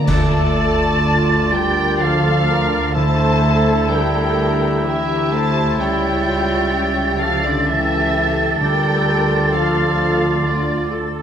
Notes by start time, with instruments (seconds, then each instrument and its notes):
0.06 double bass section D2, cello section D3, timpani D3, french horn section A3, clarinet F4, viola section A4, oboe D5, violin section D5 A5, flute section A6, concert bass drum, crash
1.06 viola section F4
1.52 french horn section G3, viola section G4, violin section A#4 G5
2.00 french horn section F3, violin section A4 F5, viola section A4
2.50 viola section A#4
2.94 timpani D3, french horn section A3, clarinet E4, viola section A4, violin section C5 A5, oboe E5, flute section A#5
3.89 french horn section G3, violin section A#4 G5
4.84 french horn section E3, violin section G4 E5, viola section G4
5.31 french horn section A3, violin section C5 A5
5.79 double bass section C#2, cello section C#3, french horn section G3, viola section E4, violin section C#5 G5, flute section A6
6.27 viola section F4
6.73 viola section G4
7.20 french horn section F3, violin section A4 F5
7.43 french horn section D3, violin section F4 D5
7.67 french horn section E3, violin section G4 E5, viola section A4
8.59 double bass section D2, cello section D3, timpani D3, french horn section G3, clarinet F4, violin section A#4 G5, oboe D5
9.53 french horn section F3, violin section A4 F5
10.46 french horn section D3, viola section F4, violin section F4 D5
10.91 viola section A4